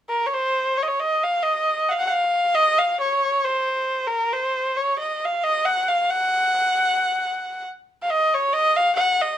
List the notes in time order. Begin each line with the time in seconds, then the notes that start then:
0.09 A#4
0.26 C#5
0.34 C5
0.77 C#5
0.83 D#5
0.87 C#5
1.00 D#5
1.23 F5
1.43 D#5
1.89 F5 F#5
2.00 F#5
2.08 F5
2.55 D#5
2.79 F5
3.00 C#5
3.44 C5
4.07 A#4
4.33 C5
4.77 C#5
4.99 D#5
5.25 F5
5.43 D#5
5.65 F#5
5.88 F5
6.10 F#5
8.02 F5
8.10 D#5
8.34 C#5
8.53 D#5
8.77 F5
8.96 F#5
9.22 D#5